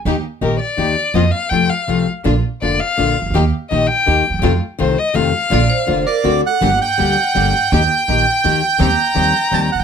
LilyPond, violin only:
\new Staff \with { instrumentName = "Violin" } { \time 3/4 \key bes \major \tempo 4 = 165 r4 bes'8 d''4. | ees''8 f''8 g''8 f''4 r8 | r4 d''8 f''4. | r4 ees''8 g''4. |
r4 c''8 ees''8 f''4~ | f''2 r4 | \key g \minor fis''2. | g''2. |
bes''2. | }